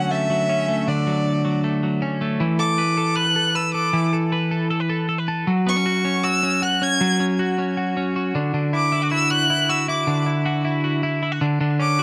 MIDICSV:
0, 0, Header, 1, 3, 480
1, 0, Start_track
1, 0, Tempo, 383142
1, 1100, Time_signature, 4, 2, 24, 8
1, 15070, End_track
2, 0, Start_track
2, 0, Title_t, "Violin"
2, 0, Program_c, 0, 40
2, 0, Note_on_c, 0, 78, 102
2, 141, Note_on_c, 0, 76, 94
2, 160, Note_off_c, 0, 78, 0
2, 1104, Note_on_c, 0, 74, 76
2, 1123, Note_off_c, 0, 76, 0
2, 2062, Note_off_c, 0, 74, 0
2, 3247, Note_on_c, 0, 86, 98
2, 3956, Note_on_c, 0, 90, 103
2, 3975, Note_off_c, 0, 86, 0
2, 4452, Note_on_c, 0, 88, 88
2, 4471, Note_off_c, 0, 90, 0
2, 4678, Note_off_c, 0, 88, 0
2, 4686, Note_on_c, 0, 86, 87
2, 5139, Note_off_c, 0, 86, 0
2, 7121, Note_on_c, 0, 85, 103
2, 7817, Note_on_c, 0, 88, 103
2, 7836, Note_off_c, 0, 85, 0
2, 8303, Note_on_c, 0, 90, 93
2, 8322, Note_off_c, 0, 88, 0
2, 8552, Note_on_c, 0, 92, 105
2, 8571, Note_off_c, 0, 90, 0
2, 9028, Note_off_c, 0, 92, 0
2, 10967, Note_on_c, 0, 86, 93
2, 11402, Note_off_c, 0, 86, 0
2, 11425, Note_on_c, 0, 88, 97
2, 11659, Note_on_c, 0, 90, 115
2, 11678, Note_off_c, 0, 88, 0
2, 12148, Note_on_c, 0, 88, 97
2, 12167, Note_off_c, 0, 90, 0
2, 12386, Note_off_c, 0, 88, 0
2, 12393, Note_on_c, 0, 86, 84
2, 12835, Note_off_c, 0, 86, 0
2, 14799, Note_on_c, 0, 86, 100
2, 15070, Note_off_c, 0, 86, 0
2, 15070, End_track
3, 0, Start_track
3, 0, Title_t, "Clean electric guitar"
3, 0, Program_c, 1, 27
3, 0, Note_on_c, 1, 50, 82
3, 0, Note_on_c, 1, 54, 60
3, 0, Note_on_c, 1, 57, 58
3, 0, Note_on_c, 1, 61, 66
3, 133, Note_off_c, 1, 57, 0
3, 138, Note_on_c, 1, 57, 54
3, 361, Note_off_c, 1, 54, 0
3, 376, Note_on_c, 1, 54, 54
3, 602, Note_off_c, 1, 61, 0
3, 617, Note_on_c, 1, 61, 58
3, 853, Note_off_c, 1, 57, 0
3, 858, Note_on_c, 1, 57, 59
3, 1093, Note_off_c, 1, 50, 0
3, 1098, Note_off_c, 1, 61, 0
3, 1098, Note_on_c, 1, 50, 75
3, 1326, Note_off_c, 1, 54, 0
3, 1341, Note_on_c, 1, 54, 58
3, 1799, Note_off_c, 1, 54, 0
3, 1814, Note_on_c, 1, 54, 53
3, 2049, Note_off_c, 1, 57, 0
3, 2054, Note_on_c, 1, 57, 50
3, 2281, Note_off_c, 1, 54, 0
3, 2296, Note_on_c, 1, 54, 50
3, 2531, Note_on_c, 1, 61, 60
3, 2767, Note_off_c, 1, 57, 0
3, 2772, Note_on_c, 1, 57, 60
3, 3006, Note_off_c, 1, 50, 0
3, 3011, Note_on_c, 1, 52, 80
3, 3063, Note_off_c, 1, 61, 0
3, 3065, Note_off_c, 1, 54, 0
3, 3247, Note_on_c, 1, 69, 63
3, 3484, Note_on_c, 1, 71, 73
3, 3522, Note_off_c, 1, 57, 0
3, 3711, Note_off_c, 1, 69, 0
3, 3726, Note_on_c, 1, 69, 64
3, 3950, Note_off_c, 1, 71, 0
3, 3965, Note_on_c, 1, 71, 62
3, 4194, Note_off_c, 1, 69, 0
3, 4209, Note_on_c, 1, 69, 60
3, 4435, Note_off_c, 1, 71, 0
3, 4450, Note_on_c, 1, 71, 65
3, 4675, Note_off_c, 1, 69, 0
3, 4690, Note_on_c, 1, 69, 61
3, 4913, Note_off_c, 1, 52, 0
3, 4928, Note_on_c, 1, 52, 80
3, 5160, Note_off_c, 1, 69, 0
3, 5175, Note_on_c, 1, 69, 64
3, 5401, Note_off_c, 1, 71, 0
3, 5416, Note_on_c, 1, 71, 75
3, 5640, Note_off_c, 1, 69, 0
3, 5655, Note_on_c, 1, 69, 61
3, 5879, Note_off_c, 1, 69, 0
3, 5889, Note_off_c, 1, 71, 0
3, 5894, Note_on_c, 1, 69, 71
3, 6016, Note_off_c, 1, 69, 0
3, 6016, Note_on_c, 1, 71, 67
3, 6133, Note_on_c, 1, 69, 58
3, 6359, Note_off_c, 1, 69, 0
3, 6369, Note_off_c, 1, 71, 0
3, 6374, Note_on_c, 1, 69, 67
3, 6495, Note_off_c, 1, 69, 0
3, 6495, Note_on_c, 1, 71, 55
3, 6616, Note_on_c, 1, 69, 69
3, 6852, Note_off_c, 1, 52, 0
3, 6857, Note_on_c, 1, 54, 80
3, 6906, Note_off_c, 1, 71, 0
3, 6907, Note_off_c, 1, 69, 0
3, 7098, Note_on_c, 1, 59, 65
3, 7220, Note_off_c, 1, 59, 0
3, 7220, Note_on_c, 1, 61, 60
3, 7338, Note_on_c, 1, 66, 80
3, 7560, Note_off_c, 1, 61, 0
3, 7575, Note_on_c, 1, 61, 64
3, 7811, Note_off_c, 1, 66, 0
3, 7816, Note_on_c, 1, 66, 64
3, 8043, Note_off_c, 1, 61, 0
3, 8058, Note_on_c, 1, 61, 60
3, 8292, Note_off_c, 1, 66, 0
3, 8297, Note_on_c, 1, 66, 62
3, 8525, Note_off_c, 1, 61, 0
3, 8540, Note_on_c, 1, 61, 61
3, 8775, Note_off_c, 1, 54, 0
3, 8780, Note_on_c, 1, 54, 82
3, 9004, Note_off_c, 1, 61, 0
3, 9019, Note_on_c, 1, 61, 63
3, 9256, Note_off_c, 1, 66, 0
3, 9261, Note_on_c, 1, 66, 76
3, 9486, Note_off_c, 1, 61, 0
3, 9501, Note_on_c, 1, 61, 63
3, 9733, Note_off_c, 1, 66, 0
3, 9738, Note_on_c, 1, 66, 67
3, 9968, Note_off_c, 1, 61, 0
3, 9983, Note_on_c, 1, 61, 57
3, 10217, Note_off_c, 1, 66, 0
3, 10222, Note_on_c, 1, 66, 59
3, 10456, Note_off_c, 1, 54, 0
3, 10461, Note_on_c, 1, 50, 82
3, 10511, Note_off_c, 1, 61, 0
3, 10692, Note_off_c, 1, 50, 0
3, 10697, Note_on_c, 1, 50, 77
3, 10934, Note_off_c, 1, 66, 0
3, 10939, Note_on_c, 1, 64, 61
3, 11162, Note_off_c, 1, 64, 0
3, 11177, Note_on_c, 1, 64, 70
3, 11299, Note_off_c, 1, 64, 0
3, 11299, Note_on_c, 1, 66, 58
3, 11420, Note_on_c, 1, 64, 66
3, 11647, Note_off_c, 1, 66, 0
3, 11662, Note_on_c, 1, 66, 59
3, 11886, Note_off_c, 1, 64, 0
3, 11901, Note_on_c, 1, 64, 61
3, 12137, Note_off_c, 1, 66, 0
3, 12142, Note_on_c, 1, 66, 67
3, 12367, Note_off_c, 1, 64, 0
3, 12382, Note_on_c, 1, 64, 66
3, 12613, Note_off_c, 1, 50, 0
3, 12618, Note_on_c, 1, 50, 75
3, 12843, Note_off_c, 1, 64, 0
3, 12858, Note_on_c, 1, 64, 62
3, 13095, Note_off_c, 1, 66, 0
3, 13100, Note_on_c, 1, 66, 73
3, 13325, Note_off_c, 1, 64, 0
3, 13340, Note_on_c, 1, 64, 61
3, 13576, Note_off_c, 1, 66, 0
3, 13581, Note_on_c, 1, 66, 59
3, 13806, Note_off_c, 1, 64, 0
3, 13821, Note_on_c, 1, 64, 66
3, 14049, Note_off_c, 1, 64, 0
3, 14059, Note_off_c, 1, 66, 0
3, 14064, Note_on_c, 1, 64, 69
3, 14181, Note_off_c, 1, 64, 0
3, 14181, Note_on_c, 1, 66, 63
3, 14293, Note_off_c, 1, 50, 0
3, 14298, Note_on_c, 1, 50, 87
3, 14349, Note_off_c, 1, 66, 0
3, 14535, Note_off_c, 1, 50, 0
3, 14540, Note_on_c, 1, 50, 86
3, 14777, Note_on_c, 1, 61, 63
3, 15022, Note_on_c, 1, 66, 76
3, 15070, Note_off_c, 1, 50, 0
3, 15070, Note_off_c, 1, 61, 0
3, 15070, Note_off_c, 1, 66, 0
3, 15070, End_track
0, 0, End_of_file